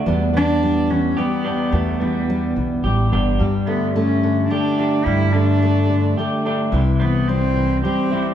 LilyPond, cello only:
\new Staff \with { instrumentName = "Cello" } { \time 3/4 \key e \dorian \tempo 4 = 108 r8 d'4 cis'8 b4 | a8 g4 r4. | r8 b8 cis'4 d'4 | e'8 d'2 r8 |
r8 b8 c'4 c'4 | }